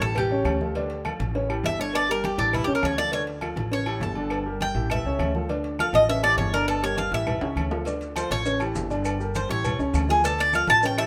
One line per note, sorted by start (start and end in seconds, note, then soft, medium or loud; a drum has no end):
0.00 0.42 A1 medium
0.00 0.25 E3 medium
0.00 0.26 E4 medium
0.00 0.26 G4 medium
0.00 0.16 A4 medium
0.00 cowbell medium
0.00 high conga soft
0.15 1.02 G4 medium
0.15 cowbell loud
0.15 high conga soft
0.15 low conga medium
0.15 low agogo loud
0.15 claves medium
0.31 0.55 C#3 medium
0.31 0.55 C#4 medium
0.31 0.55 C#5 medium
0.31 high conga soft
0.44 1.14 D2 loud
0.44 cowbell medium
0.44 high conga medium
0.44 low timbale medium
0.44 low agogo loud
0.44 claves medium
0.61 0.73 F3 medium
0.61 0.73 F4 medium
0.61 0.73 A4 medium
0.61 high conga medium
0.75 1.00 D3 medium
0.75 1.00 D4 medium
0.75 1.00 D5 medium
0.75 cowbell loud
0.75 high conga soft
0.75 low agogo medium
0.90 cowbell medium
0.90 high conga soft
1.05 1.30 F3 medium
1.05 1.30 F4 medium
1.05 1.30 A4 medium
1.05 cowbell medium
1.05 high conga medium
1.05 low timbale medium
1.05 low agogo loud
1.05 claves medium
1.20 1.61 A1 medium
1.20 cowbell medium
1.20 high conga loud
1.20 low agogo medium
1.35 1.47 C#3 medium
1.35 1.47 C#4 medium
1.35 1.47 C#5 medium
1.35 cowbell loud
1.35 high conga soft
1.49 1.73 E3 medium
1.49 1.74 E4 medium
1.49 1.74 G4 medium
1.49 high conga soft
1.49 low agogo loud
1.49 claves medium
1.63 2.33 G1 medium
1.63 1.79 E5 loud
1.63 cowbell medium
1.63 high conga medium
1.63 low timbale medium
1.79 2.03 D3 medium
1.79 2.03 D4 medium
1.79 1.94 C#5 loud
1.79 2.04 D5 medium
1.79 high conga soft
1.79 low agogo medium
1.94 2.09 D5 loud
1.94 cowbell loud
1.94 high conga soft
1.94 low agogo loud
1.94 claves medium
2.09 2.33 G3 medium
2.09 2.33 G4 medium
2.09 2.33 A#4 medium
2.09 2.24 A#4 loud
2.09 high conga soft
2.24 2.38 G4 medium
2.24 cowbell medium
2.24 high conga medium
2.24 low timbale medium
2.24 low agogo medium
2.38 2.66 A1 loud
2.38 2.62 E3 medium
2.38 2.53 D4 medium
2.38 2.62 E4 medium
2.38 2.63 G4 medium
2.38 cowbell medium
2.53 2.63 E4 medium
2.53 cowbell loud
2.53 high conga soft
2.53 low conga medium
2.53 low agogo loud
2.53 claves medium
2.64 2.81 C#2 medium
2.64 2.92 C#3 medium
2.64 2.92 C#4 medium
2.64 2.73 G4 medium
2.64 2.92 C#5 medium
2.69 high conga soft
2.75 2.84 A#4 medium
2.83 3.51 D2 medium
2.83 2.98 C#5 medium
2.83 cowbell medium
2.83 high conga medium
2.83 low timbale medium
2.83 low agogo loud
2.83 claves medium
2.97 3.10 F3 medium
2.97 3.10 F4 medium
2.97 3.10 A4 medium
2.97 3.12 D5 loud
3.12 3.37 D3 medium
3.12 3.37 D4 medium
3.12 3.22 C#5 loud
3.12 3.37 D5 medium
3.12 cowbell loud
3.12 high conga soft
3.12 low agogo medium
3.27 cowbell medium
3.27 high conga soft
3.41 3.66 F3 medium
3.41 3.66 F4 medium
3.41 3.67 A4 medium
3.41 cowbell medium
3.41 high conga medium
3.41 low timbale medium
3.41 low agogo loud
3.41 claves medium
3.56 3.98 A1 medium
3.56 cowbell medium
3.56 high conga loud
3.56 low agogo medium
3.71 3.84 C#3 medium
3.71 3.84 C#4 medium
3.71 3.84 C#5 medium
3.71 4.00 C#5 medium
3.71 cowbell loud
3.71 high conga soft
3.86 4.10 E3 medium
3.86 4.11 E4 medium
3.86 4.11 G4 medium
3.86 high conga soft
3.86 low agogo loud
3.86 claves medium
4.00 4.69 G1 loud
4.00 4.43 A4 medium
4.00 cowbell medium
4.00 high conga medium
4.00 low timbale medium
4.15 4.40 D3 medium
4.15 4.41 D4 medium
4.15 4.41 D5 medium
4.15 high conga soft
4.15 low agogo medium
4.30 cowbell loud
4.30 high conga soft
4.30 low agogo loud
4.30 claves medium
4.46 4.70 G3 medium
4.46 4.70 G4 medium
4.46 4.71 A#4 medium
4.46 high conga soft
4.61 4.89 G5 loud
4.61 cowbell medium
4.61 high conga loud
4.61 low timbale medium
4.61 low agogo medium
4.75 5.03 A1 medium
4.75 5.00 E3 medium
4.75 5.00 E4 medium
4.75 5.00 G4 medium
4.75 cowbell medium
4.75 high conga soft
4.90 5.32 E5 medium
4.90 cowbell loud
4.90 high conga soft
4.90 low conga medium
4.90 low agogo loud
4.90 claves medium
5.05 5.18 C#2 medium
5.05 5.30 C#3 medium
5.05 5.30 C#4 medium
5.05 5.30 C#5 medium
5.05 high conga soft
5.19 5.88 D2 loud
5.19 cowbell medium
5.19 high conga medium
5.19 low timbale medium
5.19 low agogo loud
5.19 claves medium
5.35 5.47 F3 medium
5.35 5.47 F4 medium
5.35 5.47 A4 medium
5.35 high conga medium
5.49 5.74 D3 medium
5.49 5.74 D4 medium
5.49 5.74 D5 medium
5.49 cowbell loud
5.49 high conga soft
5.49 low agogo medium
5.64 cowbell medium
5.64 high conga soft
5.79 6.03 F3 medium
5.79 6.04 F4 medium
5.79 6.04 A4 medium
5.79 5.94 F5 medium
5.79 cowbell medium
5.79 high conga medium
5.79 low timbale medium
5.79 low agogo loud
5.79 claves medium
5.93 6.35 A1 loud
5.93 6.09 D#5 loud
5.93 cowbell medium
5.93 high conga loud
5.93 low agogo medium
6.09 6.21 C#3 medium
6.09 6.21 C#4 medium
6.09 6.21 C#5 medium
6.09 6.23 E5 loud
6.09 cowbell loud
6.09 high conga soft
6.23 6.48 E3 medium
6.23 6.48 E4 medium
6.23 6.48 G4 medium
6.23 6.37 D5 loud
6.23 high conga soft
6.23 low agogo loud
6.23 claves medium
6.37 7.07 G1 loud
6.37 6.53 C#5 medium
6.37 cowbell medium
6.37 high conga medium
6.37 low timbale medium
6.53 6.77 D3 medium
6.53 6.78 D4 medium
6.53 6.68 A#4 loud
6.53 6.78 D5 medium
6.53 low agogo medium
6.68 6.82 A4 medium
6.68 cowbell loud
6.68 high conga soft
6.68 low agogo loud
6.68 claves medium
6.82 7.07 G3 medium
6.82 7.07 G4 medium
6.82 7.07 A#4 medium
6.82 6.98 C#5 loud
6.82 high conga soft
6.97 7.12 F5 medium
6.97 cowbell medium
6.97 high conga loud
6.97 low timbale medium
6.97 low agogo medium
7.11 7.40 A1 medium
7.11 7.37 E3 medium
7.11 7.37 E4 medium
7.11 7.37 G4 medium
7.11 7.83 E5 loud
7.11 cowbell medium
7.11 high conga soft
7.27 cowbell loud
7.27 high conga soft
7.27 low conga medium
7.27 high timbale medium
7.27 low agogo loud
7.27 claves medium
7.41 7.55 C#2 medium
7.41 7.66 C#3 medium
7.41 7.66 C#4 medium
7.41 7.66 C#5 medium
7.41 high timbale loud
7.56 8.25 D2 medium
7.56 cowbell medium
7.56 high conga medium
7.56 low agogo loud
7.56 claves medium
7.71 7.83 F3 medium
7.71 7.83 F4 medium
7.71 7.84 A4 medium
7.71 low timbale loud
7.85 8.11 D3 medium
7.85 8.11 D4 medium
7.85 8.11 D5 medium
7.85 cowbell loud
7.85 low agogo medium
7.85 maracas medium
8.01 cowbell medium
8.01 high conga soft
8.01 maracas soft
8.16 8.40 F3 medium
8.16 8.41 F4 medium
8.16 8.41 A4 medium
8.16 8.31 C5 medium
8.16 cowbell medium
8.16 high conga medium
8.16 low timbale medium
8.16 low agogo loud
8.16 claves medium
8.16 maracas medium
8.30 8.72 A1 medium
8.30 8.59 C#5 loud
8.30 cowbell medium
8.30 high conga loud
8.30 low agogo medium
8.30 maracas soft
8.45 8.58 C#3 medium
8.45 8.58 C#4 medium
8.45 8.58 C#5 medium
8.45 cowbell loud
8.45 high conga soft
8.45 maracas medium
8.60 8.85 E3 medium
8.60 8.85 E4 medium
8.60 8.85 G4 medium
8.60 high conga soft
8.60 low agogo loud
8.60 claves medium
8.60 maracas soft
8.75 9.44 G1 medium
8.75 cowbell medium
8.75 high conga medium
8.75 low timbale medium
8.75 maracas medium
8.90 9.14 D3 medium
8.90 9.15 D4 medium
8.90 9.15 D5 medium
8.90 high conga soft
8.90 low agogo medium
8.90 maracas soft
9.05 cowbell loud
9.05 high conga soft
9.05 low agogo loud
9.05 claves medium
9.05 maracas medium
9.20 9.44 G3 medium
9.20 9.44 G4 medium
9.20 9.44 A#4 medium
9.20 high conga soft
9.20 maracas soft
9.35 9.50 C5 medium
9.35 cowbell medium
9.35 high conga loud
9.35 low timbale medium
9.35 low agogo medium
9.35 maracas medium
9.49 9.77 A1 loud
9.49 9.74 E3 medium
9.49 9.74 E4 medium
9.49 9.74 G4 medium
9.49 9.78 C#5 medium
9.49 cowbell medium
9.49 high conga soft
9.49 maracas soft
9.64 cowbell loud
9.64 high conga soft
9.64 low conga medium
9.64 low agogo loud
9.64 claves medium
9.64 maracas medium
9.79 9.93 C#2 medium
9.79 10.03 C#3 medium
9.79 10.04 C#4 medium
9.79 10.04 C#5 medium
9.79 maracas soft
9.93 10.62 D2 loud
9.93 cowbell medium
9.93 high conga medium
9.93 low timbale medium
9.93 low agogo loud
9.93 claves medium
9.93 maracas medium
10.09 10.21 F3 medium
10.09 10.21 F4 medium
10.09 10.24 G#4 loud
10.09 10.21 A4 medium
10.09 high conga medium
10.09 maracas soft
10.24 10.48 D3 medium
10.24 10.48 D4 medium
10.24 10.39 A4 loud
10.24 10.48 D5 medium
10.24 cowbell loud
10.24 high conga soft
10.24 low agogo medium
10.24 maracas medium
10.39 10.54 D5 loud
10.39 cowbell medium
10.39 high conga soft
10.39 maracas soft
10.53 10.78 F3 medium
10.53 10.78 F4 medium
10.53 10.78 A4 medium
10.53 10.69 F5 medium
10.53 cowbell medium
10.53 high conga medium
10.53 low timbale medium
10.53 low agogo loud
10.53 claves medium
10.53 maracas medium
10.67 11.07 A1 medium
10.67 10.83 A5 loud
10.67 cowbell medium
10.67 high conga loud
10.67 low agogo medium
10.67 maracas soft
10.83 10.95 C#3 medium
10.83 10.95 C#4 medium
10.83 10.96 C#5 medium
10.83 10.98 G5 medium
10.83 cowbell loud
10.83 high conga soft
10.83 maracas medium
10.97 11.07 E3 medium
10.97 11.07 E4 medium
10.97 11.07 G4 medium
10.97 11.07 E5 loud
10.97 high conga soft
10.97 low agogo loud
10.97 claves medium
10.97 maracas soft